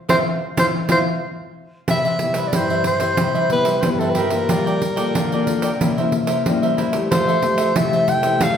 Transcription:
0.09 C4 E4 F4 C5 E5 F5, pandeiro
0.57 C4 E4 F4 C5 E5 F5, pandeiro
0.88 C4 E4 F4 C5 E5 F5, pandeiro
1.88 C3 G4 B4 C5 E5, pandeiro
2.05 B4 C5 E5, pandeiro
2.19 G3 B3 E4, muted cavaquinho stroke, pandeiro
2.34 B4 C5 E5, pandeiro
2.48 D5
2.53 G2 G3 E4 G4 B4 C5 E5, pandeiro
2.70 B4 C5 E5, pandeiro
2.84 C5, pandeiro
3.00 G3 E4 B4 C5 E5, pandeiro
3.17 C3 G4 B4 C5 E5, pandeiro
3.35 B4 C5 E5, pandeiro
3.50 G3 B3 E4 B4, muted cavaquinho stroke, pandeiro
3.65 B4 C5 E5, pandeiro
3.81 G2 G3 B3 E4 C5, pandeiro
3.90 B4
3.99 A4 B4 C5 E5, pandeiro
4.09 B4
4.15 G4 A#4 B4 C5 E5, pandeiro
4.30 A#3 F4 B4 C5 E5, pandeiro
4.49 G3 F4 A#4 D5 G5, pandeiro
4.66 A#4 D5 G5, pandeiro
4.81 muted cavaquinho stroke, pandeiro
4.96 A#3 F4 A4 A#4 D5 G5, pandeiro
5.15 D3 F4 A#4 D5 G5, pandeiro
5.32 A#3 F4 A4 A#4 D5 G5, pandeiro
5.47 A#3 F4 A4, pandeiro
5.62 A#4 D5 G5, pandeiro
5.81 C3 A#3 C#4 E4 A#4 C5 E5, pandeiro
5.97 A#3 C#4 E4 A#4 C5 E5, pandeiro
6.12 muted cavaquinho stroke, pandeiro
6.27 A#4 C5 E5, pandeiro
6.46 G3 A#3 C#4 E4, pandeiro
6.62 A#4 C5 E5, pandeiro
6.77 E4 A#4 C5 E5, pandeiro
6.92 A3 E4 G4 A#4 C5 E5, pandeiro
7.11 F3 F4 A4 C5 E5, pandeiro
7.27 A4 C5 E5, pandeiro
7.43 A3 E4 G4, muted cavaquinho stroke, pandeiro
7.57 A4 C5 E5, pandeiro
7.76 C3 A3 E4 F4 G4 A4 C5 E5, pandeiro
7.93 A4 C5 E5, pandeiro
8.08 G5, pandeiro
8.23 A3 E4 G4 A4 C5 E5, pandeiro
8.41 F3 F4 A4 C5 E5 F5, pandeiro

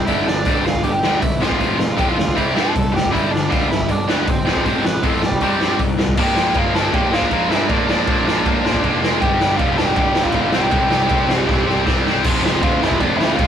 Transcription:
0.06 G1 G2 D3 G3 E4 E5, kick, open hi-hat
0.26 G1 G2 D3 D4 D5, snare
0.45 D2 G2 D3 G3, kick, open hi-hat
0.64 G1 G2 D3 F4 F5, snare
0.75 kick
0.83 G1 G2 D3 G4 G5, kick, open hi-hat
0.92 G4 G5
1.03 D2 G2 D3 G3, snare
1.20 B1 G2 D3 E4 E5, kick, open hi-hat
1.40 A1 F2 C3 F3 F4 F5, snare
1.51 kick
1.59 A1 F2 C3 F3, kick, open hi-hat
1.77 A1 F2 C3, snare
1.97 E2 F2 C3 F3 G4 G5, kick, open hi-hat
2.08 F4 F5
2.18 D2 F2 C3, snare
2.28 kick
2.35 C2 C3 G3 C4 E4 E5, kick, open hi-hat
2.55 G2 C3 G3 C4 A4 A5, snare
2.73 C2 C3 G3, kick, open hi-hat
2.92 F#1 C3 G3 G4
2.96 G5, snare
3.05 kick
3.11 G1 G2 D3 G3 E4 E5, kick
3.16 open hi-hat
3.30 G1 G2 D3 D4 D5
3.35 snare
3.49 D2 G2 D3 G3 F4 F5, kick, open hi-hat
3.70 G1 G2 D3 E4 E5, snare
3.80 kick
3.89 G1 G2 D3 D4 D5, kick, open hi-hat
4.08 D2 G2 D3 G3 B3 B4, snare
4.27 G#1 G2 D3 C4 C5, kick, open hi-hat
4.45 A1 F2 C3 F3, snare
4.56 kick
4.64 A1 F2 C3 F3 C5, kick, open hi-hat
4.69 C4
4.84 A1 F2 C3 B3 B4, snare
5.03 E2 F2 C3 F3 A3, kick, open hi-hat
5.07 A4
5.22 A1 F2 C3 G3, snare
5.26 G4
5.32 kick
5.40 C2 C3 G3 C4, kick, open hi-hat
5.60 G2 C3 G3 C4, snare
5.79 C2 C3 G3, kick, open hi-hat
5.98 C2 C3 G3, snare
6.08 kick
6.17 A#1 A#2 F3 A#3 G4, kick, crash
6.22 G5
6.35 A#1 A#2 F3 A#3, snare
6.54 G1 A#2 F3 A#3 F4, kick, ride
6.58 F5
6.74 A#2 F3 A#3 A4 A5, snare
6.92 A#1 A#2 F3 A#3 G4 G5, kick, ride
7.12 A#1 A#2 F3 A#3 F4 F5, snare
7.22 kick
7.31 A#1 A#2 F3 A#3, kick, ride
7.49 G2 A#2 F3 A#3 E4 E5, snare
7.69 A#1 A#2 F3 A#3 D4 D5, kick, ride
7.86 A#1 A#2 F3 D4 D5, snare
7.90 A#3
8.07 A#1 A#2 F3 A#3, kick, ride
8.25 A#1 A#2 F3 A#3, snare
8.45 A#1 A#2 F3 A#3, kick, ride
8.63 A#1 A#2 F3 A#3, snare
8.74 kick
8.83 F1 A#2 F3 A#3, kick, ride
9.02 A#2 F3 A#3, snare
9.21 G1 G2 D3 G3 G4 G5, kick, ride
9.40 G1 G2 D3 G3, snare
9.57 F1 G2 D3 G3 F4 F5, kick, ride
9.77 G2 D3 G3 A4 A5, snare
9.85 G4 G5
9.96 G1 G2 D3 G3 G4 G5, kick, ride
10.14 G1 G2 D3 G3, snare
10.23 F4 F5, kick
10.32 G1 G2 D3 G3, kick, ride
10.52 C2 C3 G3 C4 G4 G5, snare
10.71 C2 C3 G3 C4, kick, ride
10.90 C2 C3 G3 C4, snare
11.09 C2 C3 G3 C4, kick, ride
11.28 C2 C3 G3 C4, snare
11.41 F5
11.47 C2 C3 G3 C4, kick, snare
11.67 C2 C3 G3 C4, snare
11.86 C2 C3 G3 C4, kick, snare
12.06 C3 G3 C4, snare
12.24 F1 F2 C3 F3, kick, crash
12.42 F1 F2 C3 F3, snare
12.62 D2 F2 C3 F3 F4 F5, kick, ride
12.80 F1 F2 C3 F3 E4, snare
12.84 E5
12.91 kick
12.99 F1 F2 C3 F3 D4 D5, kick, ride
13.16 D2 F2 C3 F3 E4 E5
13.21 snare
13.35 C2 F2 C3 F3 F4 F5, ride
13.39 kick

